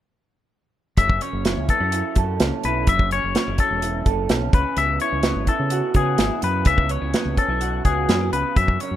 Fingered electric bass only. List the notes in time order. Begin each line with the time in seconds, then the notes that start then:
0.97 F#1
1.33 F#1
1.57 C#2
1.80 F#2
2.16 F#2
2.41 C#2
2.64 B1
2.87 F#1
3.24 F#1
3.48 F#1
3.71 E1
4.06 F#1
4.30 B1
4.53 C#2
4.77 C#2
5.12 C#2
5.35 G#1
5.59 C#3
5.95 C#3
6.19 G#1
6.43 F#2
6.66 C#2
7.02 C#2
7.25 C#2
7.48 B1
7.85 C#2
8.09 F#2
8.32 C#2
8.57 F#2
8.91 F#2